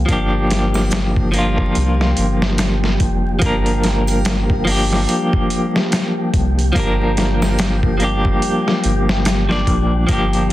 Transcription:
Already playing: G3 G4
0.06 F3 A#3, kick, closed hi-hat
0.10 D4 G4
0.51 snare, closed hi-hat
0.74 snare, triangle
0.91 snare, closed hi-hat, maracas
1.16 kick
1.32 F3 A#3, closed hi-hat
1.36 D4 F4
1.58 kick
1.75 C2, closed hi-hat
2.01 snare
2.17 G1, closed hi-hat
2.42 snare
2.58 snare, closed hi-hat, maracas
2.84 snare
3.00 kick, closed hi-hat
3.39 G1 F3 A#3, kick, closed hi-hat
3.44 D4 A#4
3.66 closed hi-hat
3.84 snare, closed hi-hat
4.07 closed hi-hat, triangle
4.25 snare, closed hi-hat, maracas
4.50 kick
4.65 F3 A#3, open hi-hat
4.69 D4 G4
4.93 snare
5.09 closed hi-hat
5.33 kick
5.50 closed hi-hat
5.76 snare
5.92 snare, closed hi-hat, maracas
6.34 C2, kick, closed hi-hat
6.59 closed hi-hat
6.72 F3 A#3, kick, closed hi-hat
6.77 D4 A#4
7.17 snare, closed hi-hat
7.42 snare, triangle
7.59 snare, closed hi-hat, maracas
7.83 kick
7.97 F3 A#3, closed hi-hat
8.02 D4 G4
8.25 kick
8.42 closed hi-hat
8.68 snare
8.84 G1, closed hi-hat
9.09 snare
9.25 snare, closed hi-hat, maracas
9.49 F3 A#3 D4 D5, snare
9.67 A#1, kick, closed hi-hat
10.07 G1 F3 A#3 F4, kick, closed hi-hat
10.11 D4 G4
10.33 closed hi-hat

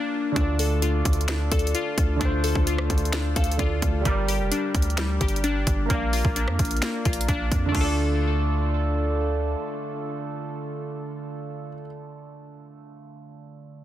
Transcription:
Already playing: A#3 D4 F4 A#4 D5 F5
0.32 D3 A3
0.36 D2 D4 F4, kick, closed hi-hat
0.41 D5
0.59 A4, open hi-hat
0.82 F4, closed hi-hat
1.05 D2, kick, closed hi-hat
1.13 closed hi-hat
1.21 closed hi-hat
1.28 D4, finger snap, snare, closed hi-hat
1.52 D2 A4, kick, closed hi-hat
1.59 closed hi-hat
1.67 closed hi-hat
1.75 F4, closed hi-hat
1.98 D2, kick, closed hi-hat
2.16 D3 A3
2.21 D2 D4 F4, kick, closed hi-hat
2.25 C5
2.44 A4, open hi-hat
2.55 D2, kick
2.67 F4, closed hi-hat
2.78 cross-stick
2.90 D2, kick, closed hi-hat
2.98 closed hi-hat
3.05 closed hi-hat
3.13 D4, finger snap, snare, closed hi-hat
3.36 D2 A4 F5, kick, closed hi-hat
3.44 closed hi-hat
3.52 closed hi-hat
3.57 D2 D3 A3 F4 D5, kick, closed hi-hat
3.62 A4
3.82 D2, kick, closed hi-hat
4.01 G3 G4
4.05 G1 G3 A#4, kick, closed hi-hat
4.09 D5
4.28 G4, open hi-hat
4.40 F1
4.51 D4, closed hi-hat
4.75 D2, kick, closed hi-hat
4.82 closed hi-hat
4.90 closed hi-hat
4.97 G3, finger snap, snare, closed hi-hat
5.21 G1 G4, kick, closed hi-hat
5.28 closed hi-hat
5.36 closed hi-hat
5.44 D4, closed hi-hat
5.67 G1, kick, closed hi-hat
5.86 A#3 A#4
5.90 A#1 A#3 D5, kick, closed hi-hat
5.94 F5
6.13 F4, open hi-hat
6.25 A#1, kick
6.36 D4, closed hi-hat
6.48 F2, cross-stick
6.59 A#1, kick, closed hi-hat
6.65 closed hi-hat
6.71 closed hi-hat
6.77 closed hi-hat
6.82 A#3, finger snap, snare, closed hi-hat
7.05 A#1 F4, kick, closed hi-hat
7.13 closed hi-hat
7.21 closed hi-hat
7.28 A#1 D4, kick, closed hi-hat
7.52 F2, kick, closed hi-hat
7.66 D3 D4
7.72 D2 A3 F4, kick, crash
7.78 F4 A4
7.83 D5

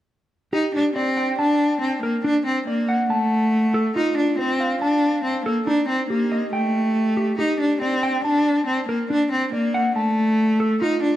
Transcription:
0.53 D#4 G4
0.75 D4
0.96 C4 D5
1.17 G5
1.39 D4 A5
1.81 C4
2.03 A#3 A#4
2.24 D4
2.46 C4
2.67 A#3 D5
2.89 F#5
3.10 A3 A5
3.74 A4
3.96 D#4 F4
4.17 D4
4.39 C4 C5
4.60 F5
4.82 D4 A5
5.24 C4
5.46 A#3 A4
5.67 D4 D#4
5.89 C4
6.10 A#3 G4
6.32 D#5
6.53 A3 G5
7.17 G4
7.39 D#4 G4
7.61 D4
7.82 C4 D5
8.03 G5
8.24 D4 A5
8.67 C4
8.88 A#3 A#4
9.10 D4
9.32 C4
9.53 A#3 D5
9.74 F#5
9.96 A3 A5
10.60 A4
10.82 D#4 F4
11.03 D4

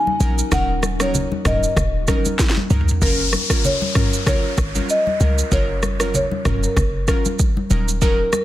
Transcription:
Already playing: C#3 F#3 A#3 D#4 F#4 G#5
0.07 high conga
0.20 A#1 F#3 C#4 D#4 A#4, high conga, shaker
0.38 shaker
0.51 D#1 F#3 C#4 D#4 A#4 F#5, kick, cross-stick, low conga, shaker
0.83 cross-stick, high conga, shaker
1.00 F#3 C#4 D#4 A#4 C#5, cross-stick, shaker
1.14 low conga, shaker
1.32 high conga
1.45 D#1 F#3 C#4 D#4 A#4 D#5, kick, cross-stick, mid tom, shaker
1.63 shaker
1.76 D#1, kick, cross-stick, low conga, shaker
2.08 F#3 C#4 D#4 A#4, kick, cross-stick, high conga, shaker
2.25 high conga, shaker
2.39 kick, snare, shaker
2.50 snare
2.57 high conga
2.70 C#2 F#3 C#4 D#4 A#4, mid tom, high conga, shaker
2.81 floor tom
2.88 floor tom, shaker
3.01 F#1 F#3 C#4 F4 A#4, kick, downlifter, shaker
3.33 cross-stick, high conga, shaker
3.50 F#3 C#4 F4 A#4, kick, cross-stick, shaker
3.64 C#5, low conga, shaker
3.82 high conga
3.95 F#3 C#4 F4 A#4, kick, cross-stick, mid tom, shaker
4.13 shaker
4.26 F#3 C#4 F4 A#4 C#5, kick, cross-stick, low conga, shaker
4.58 G#1, kick, cross-stick, shaker
4.75 F#3 C#4 F4 A#4, high conga, shaker
4.89 D#5, shaker
5.07 high conga
5.20 C#2 F#3 C#4 F4 A#4, high conga, shaker
5.38 shaker
5.52 F#1 F#3 C#4 F4 A#4 C#5, kick, shaker
5.83 cross-stick, high conga, shaker
6.00 F#3 C#4 F4 A#4, cross-stick, shaker
6.14 C#5, low conga, shaker
6.31 high conga
6.45 F1 F#3 C#4 F4 A#4, kick, cross-stick, mid tom, shaker
6.63 A#4, shaker
6.77 F#1, kick, cross-stick, low conga, shaker
7.08 F#3 C#4 F4 A#4, kick, cross-stick, shaker
7.25 high conga, shaker
7.39 kick, shaker
7.57 high conga
7.70 D#1 F#3 C#4 D#4 A#4, high conga, shaker
7.88 shaker
8.02 F#3 C#4 D#4 A#4, kick, shaker
8.33 A#4, cross-stick, high conga, shaker

